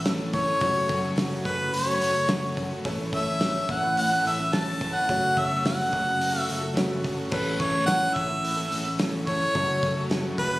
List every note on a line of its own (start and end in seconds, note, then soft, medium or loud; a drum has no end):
0.00 0.51 A1 medium
0.00 0.59 C#4 medium
0.00 0.59 A4 medium
0.00 0.59 B4 medium
0.06 0.60 A2 medium
0.06 0.32 E3 loud
0.06 0.32 A3 medium
0.06 0.34 C#4 medium
0.06 0.33 E4 medium
0.06 0.35 A4 loud
0.06 0.34 B4 loud
0.06 snare loud
0.06 open hi-hat medium
0.33 0.60 E3 medium
0.33 0.48 A3 medium
0.33 0.46 C#4 medium
0.33 0.47 E4 medium
0.33 0.46 A4 medium
0.33 0.45 B4 medium
0.33 1.14 C#5 loud
0.33 kick medium
0.33 open hi-hat medium
0.46 0.61 A3 medium
0.46 0.62 C#4 medium
0.46 0.61 E4 soft
0.46 0.62 A4 medium
0.46 0.61 B4 medium
0.61 1.33 F#1 medium
0.61 0.89 F#2 medium
0.61 0.89 C#3 medium
0.61 0.87 F#3 medium
0.61 0.88 A3 medium
0.61 0.89 C#4 loud
0.61 2.81 F#4 medium
0.61 0.89 F#4 medium
0.61 0.89 A4 loud
0.61 2.81 A4 medium
0.61 2.81 C#5 medium
0.61 kick loud
0.61 open hi-hat medium
0.88 1.03 F#3 medium
0.88 1.03 A3 medium
0.88 1.03 C#4 medium
0.88 1.02 F#4 medium
0.88 1.01 A4 medium
0.88 kick medium
0.88 open hi-hat medium
1.02 1.15 F#3 soft
1.02 1.16 A3 medium
1.02 1.17 C#4 medium
1.02 1.16 F#4 medium
1.02 1.16 A4 medium
1.16 1.45 F#2 medium
1.16 1.45 C#3 medium
1.16 1.42 F#3 medium
1.16 1.42 A3 medium
1.16 1.58 C#4 medium
1.16 1.44 F#4 loud
1.16 1.44 A4 loud
1.16 snare loud
1.16 open hi-hat medium
1.43 1.94 F#1 medium
1.43 1.58 F#3 medium
1.43 1.58 A3 medium
1.43 1.57 F#4 medium
1.43 1.56 A4 medium
1.43 1.75 B4 medium
1.43 kick medium
1.43 open hi-hat medium
1.57 1.71 F#3 soft
1.57 1.71 A3 soft
1.57 1.72 F#4 medium
1.57 1.72 A4 medium
1.57 muted overdriven electric guitar stroke medium
1.72 1.87 F#3 medium
1.72 1.86 A3 medium
1.72 1.84 F#4 medium
1.72 1.83 A4 medium
1.72 2.57 C#5 loud
1.72 open hi-hat medium
1.84 2.14 F#3 soft
1.84 2.14 A3 soft
1.84 2.00 C#4 medium
1.84 2.13 F#4 medium
1.84 2.12 A4 soft
1.99 2.73 F#1 medium
1.99 2.13 F#3 medium
1.99 2.14 A3 medium
1.99 2.14 C#4 medium
1.99 2.13 F#4 medium
1.99 open hi-hat medium
2.13 2.27 F#3 soft
2.13 2.28 A3 soft
2.13 2.28 F#4 soft
2.13 2.28 A4 medium
2.13 muted overdriven electric guitar stroke medium
2.28 2.56 F#2 medium
2.28 2.57 C#3 medium
2.28 2.55 F#3 medium
2.28 2.56 A3 medium
2.28 2.57 C#4 loud
2.28 2.56 F#4 medium
2.28 2.57 A4 medium
2.28 snare loud
2.28 open hi-hat medium
2.56 2.71 F#3 medium
2.56 2.71 A3 medium
2.56 2.70 C#4 medium
2.56 2.71 F#4 medium
2.56 2.70 A4 medium
2.56 kick medium
2.56 open hi-hat medium
2.71 2.86 F#3 soft
2.71 2.85 A3 soft
2.71 2.85 C#4 medium
2.71 2.86 F#4 medium
2.71 2.85 A4 medium
2.83 3.57 A1 medium
2.83 3.40 A2 medium
2.83 3.10 E3 medium
2.83 3.13 A3 medium
2.83 3.14 C#4 medium
2.83 3.13 A4 loud
2.83 5.05 A4 medium
2.83 5.05 B4 medium
2.83 5.05 C#5 medium
2.83 kick loud
2.83 open hi-hat medium
2.88 3.14 E4 medium
2.88 3.14 B4 medium
3.12 3.40 E3 medium
3.12 3.28 A3 medium
3.12 3.28 C#4 medium
3.12 3.28 E4 medium
3.12 3.25 A4 medium
3.12 3.72 E5 loud
3.12 kick medium
3.12 open hi-hat medium
3.16 3.27 B4 medium
3.26 3.41 A3 medium
3.26 3.42 E4 medium
3.26 3.42 A4 medium
3.26 3.42 B4 medium
3.30 3.43 C#4 soft
3.41 4.11 A2 loud
3.41 3.83 E3 medium
3.41 3.68 A3 medium
3.41 3.70 C#4 medium
3.41 3.83 A4 loud
3.41 snare loud
3.41 open hi-hat medium
3.45 3.70 E4 medium
3.45 3.71 B4 medium
3.69 4.17 A1 medium
3.69 3.83 A3 medium
3.69 3.84 C#4 medium
3.69 3.84 E4 medium
3.69 3.82 B4 medium
3.69 3.97 F#5 medium
3.69 kick medium
3.69 open hi-hat medium
3.83 3.97 C#4 soft
3.83 3.98 E4 soft
3.83 3.97 B4 soft
3.83 muted overdriven electric guitar stroke medium
3.97 4.12 A3 medium
3.97 4.12 C#4 medium
3.97 4.11 E4 medium
3.97 4.10 B4 medium
3.97 4.23 F#5 loud
3.97 open hi-hat medium
4.11 4.26 A3 medium
4.11 4.40 C#4 soft
4.11 4.38 E4 soft
4.11 4.26 A4 medium
4.11 4.36 B4 medium
4.25 4.96 A1 medium
4.25 4.40 E3 medium
4.25 4.40 A3 medium
4.25 4.40 C#4 medium
4.25 4.39 A4 medium
4.25 4.56 E5 loud
4.25 open hi-hat medium
4.38 4.53 C#4 soft
4.38 4.52 E4 medium
4.38 4.52 B4 soft
4.38 muted overdriven electric guitar stroke medium
4.52 5.07 A2 loud
4.52 4.79 E3 loud
4.52 4.80 A3 medium
4.52 4.81 C#4 medium
4.52 4.81 E4 medium
4.52 4.82 A4 loud
4.52 4.82 B4 medium
4.52 4.96 A5 loud
4.52 snare loud
4.52 open hi-hat medium
4.81 5.07 E3 medium
4.81 4.95 A3 medium
4.81 4.95 C#4 medium
4.81 4.95 E4 medium
4.81 4.93 A4 medium
4.81 4.93 B4 medium
4.81 kick medium
4.81 open hi-hat medium
4.94 5.09 A3 medium
4.94 5.09 C#4 soft
4.94 5.08 E4 soft
4.94 5.09 A4 medium
4.94 5.09 B4 medium
4.94 5.41 F#5 loud
5.08 5.81 F#1 loud
5.08 5.36 F#2 medium
5.08 5.37 C#3 medium
5.08 5.35 F#3 medium
5.08 5.36 A3 medium
5.08 5.38 C#4 medium
5.08 5.37 F#4 medium
5.08 6.73 F#4 medium
5.08 5.37 A4 medium
5.08 6.73 A4 medium
5.08 6.73 C#5 medium
5.08 kick loud
5.08 open hi-hat medium
5.36 5.50 F#3 medium
5.36 5.50 A3 medium
5.36 5.51 C#4 medium
5.36 5.49 F#4 medium
5.36 5.49 A4 medium
5.36 5.66 E5 loud
5.36 kick medium
5.36 open hi-hat medium
5.50 5.62 F#3 soft
5.50 5.62 A3 soft
5.50 5.65 C#4 medium
5.50 5.63 F#4 medium
5.50 5.64 A4 medium
5.63 5.91 F#2 medium
5.63 5.92 C#3 medium
5.63 5.89 F#3 medium
5.63 5.90 A3 medium
5.63 6.07 C#4 medium
5.63 5.91 F#4 medium
5.63 5.92 A4 medium
5.63 snare loud
5.63 open hi-hat medium
5.67 6.41 F#5 medium
5.91 6.41 F#1 medium
5.91 6.06 F#3 medium
5.91 6.05 A3 medium
5.91 6.04 F#4 medium
5.91 6.03 A4 medium
5.91 kick medium
5.91 open hi-hat medium
6.04 6.16 F#3 soft
6.04 6.18 A3 soft
6.04 6.18 F#4 medium
6.04 6.19 A4 medium
6.04 muted overdriven electric guitar stroke medium
6.18 6.31 F#3 medium
6.18 6.31 A3 medium
6.18 6.30 F#4 medium
6.18 6.29 A4 medium
6.18 open hi-hat medium
6.31 6.60 F#3 soft
6.31 6.59 A3 soft
6.31 6.58 F#4 medium
6.31 6.57 A4 medium
6.35 6.49 C#4 medium
6.41 6.73 E5 medium
6.49 7.21 F#1 medium
6.49 6.62 F#3 medium
6.49 6.63 A3 medium
6.49 6.63 C#4 medium
6.49 6.62 F#4 medium
6.49 open hi-hat medium
6.58 6.72 F#3 medium
6.58 6.73 A3 soft
6.58 6.72 F#4 medium
6.58 6.73 A4 medium
6.63 muted overdriven electric guitar stroke soft
6.72 7.02 F#2 medium
6.72 7.02 C#3 medium
6.72 6.99 F#3 medium
6.72 7.00 A3 medium
6.72 7.01 F#4 medium
6.72 7.01 A4 medium
6.77 7.06 C#4 loud
6.77 7.32 F#4 medium
6.77 7.05 F#4 medium
6.77 7.31 A4 medium
6.77 7.31 C#5 medium
6.77 snare loud
6.77 open hi-hat medium
7.00 7.15 F#3 medium
7.00 7.14 A3 medium
7.00 7.14 F#4 medium
7.00 7.13 A4 medium
7.04 7.19 F#3 medium
7.04 7.19 A3 medium
7.04 7.19 C#4 medium
7.04 7.17 F#4 medium
7.04 kick medium
7.04 open hi-hat medium
7.14 7.29 F#3 soft
7.14 7.28 A3 soft
7.14 7.29 F#4 soft
7.14 7.30 A4 medium
7.19 7.33 A3 medium
7.19 7.34 C#4 medium
7.29 8.04 A1 medium
7.29 7.86 A2 medium
7.29 7.58 E3 medium
7.29 7.55 A3 medium
7.29 7.56 C#4 medium
7.29 7.57 E4 medium
7.29 9.51 A4 medium
7.29 7.57 B4 medium
7.29 7.61 B4 medium
7.29 9.51 B4 medium
7.29 9.51 C#5 medium
7.29 kick loud
7.29 crash loud
7.34 7.61 C#4 loud
7.34 7.61 A4 loud
7.56 7.87 E3 medium
7.56 7.72 A3 medium
7.56 7.71 C#4 medium
7.56 7.70 E4 medium
7.56 7.69 B4 medium
7.56 7.86 C#5 medium
7.56 kick medium
7.56 open hi-hat medium
7.60 7.76 A3 medium
7.60 7.75 C#4 medium
7.60 7.74 A4 medium
7.70 7.85 C#4 soft
7.70 7.86 E4 soft
7.70 7.85 B4 soft
7.75 7.88 A3 medium
7.75 7.89 A4 medium
7.85 8.57 A2 medium
7.85 8.30 E3 loud
7.85 8.13 A3 medium
7.85 8.14 C#4 medium
7.85 8.14 E4 medium
7.85 8.15 B4 medium
7.85 8.15 F#5 loud
7.85 snare loud
7.85 open hi-hat medium
7.90 8.30 A4 loud
8.13 8.64 A1 medium
8.13 8.29 A3 medium
8.13 8.29 C#4 medium
8.13 8.28 E4 medium
8.13 8.27 B4 medium
8.13 8.98 E5 loud
8.13 kick medium
8.13 open hi-hat medium
8.28 8.41 C#4 soft
8.28 8.42 E4 medium
8.28 8.43 B4 medium
8.28 muted overdriven electric guitar stroke medium
8.42 8.57 A3 soft
8.42 8.57 C#4 medium
8.42 8.56 E4 medium
8.42 8.55 B4 medium
8.42 open hi-hat medium
8.56 8.71 A3 medium
8.56 8.86 C#4 soft
8.56 8.84 E4 soft
8.56 8.73 A4 medium
8.56 8.83 B4 medium
8.71 9.43 A1 medium
8.71 8.86 E3 medium
8.71 8.86 A3 medium
8.71 8.86 C#4 medium
8.71 8.86 A4 medium
8.71 open hi-hat medium
8.84 8.97 C#4 soft
8.84 8.98 E4 soft
8.84 8.98 B4 medium
8.84 muted overdriven electric guitar stroke medium
8.98 9.53 A2 loud
8.98 9.26 E3 loud
8.98 9.24 A3 medium
8.98 9.26 C#4 medium
8.98 9.27 E4 medium
8.98 9.29 A4 medium
8.98 9.27 B4 medium
8.98 snare loud
8.98 open hi-hat medium
9.26 9.53 E3 medium
9.26 9.54 A3 medium
9.26 9.54 C#4 medium
9.26 9.55 E4 medium
9.26 9.41 A4 medium
9.26 9.55 B4 medium
9.26 10.06 C#5 loud
9.26 kick medium
9.26 open hi-hat medium
9.42 9.56 A3 medium
9.42 9.56 C#4 medium
9.42 9.57 A4 medium
9.54 10.26 F#1 loud
9.54 9.82 F#2 medium
9.54 9.82 C#3 medium
9.54 9.80 F#3 medium
9.54 9.81 A3 medium
9.54 9.84 C#4 medium
9.54 10.60 F#4 medium
9.54 9.82 F#4 medium
9.54 10.60 A4 medium
9.54 9.83 A4 medium
9.54 10.60 C#5 medium
9.54 kick loud
9.54 open hi-hat medium
9.81 9.96 F#3 medium
9.81 9.96 A3 medium
9.81 9.97 C#4 medium
9.81 9.95 F#4 medium
9.81 9.94 A4 medium
9.81 kick medium
9.81 open hi-hat medium
9.95 10.08 F#3 medium
9.95 10.08 A3 medium
9.95 10.12 C#4 medium
9.95 10.09 F#4 medium
9.95 10.09 A4 medium
10.09 10.38 F#2 medium
10.09 10.38 C#3 medium
10.09 10.36 F#3 medium
10.09 10.37 A3 medium
10.09 10.53 C#4 medium
10.09 10.38 F#4 medium
10.09 10.38 A4 loud
10.09 snare loud
10.09 open hi-hat medium
10.37 10.60 F#1 medium
10.37 10.52 F#3 medium
10.37 10.52 A3 medium
10.37 10.52 F#4 medium
10.37 10.51 A4 medium
10.37 10.60 B4 loud
10.37 kick medium
10.37 open hi-hat medium
10.53 10.60 F#3 soft
10.53 10.60 A3 soft
10.53 10.60 F#4 medium
10.53 10.60 A4 medium
10.53 muted overdriven electric guitar stroke medium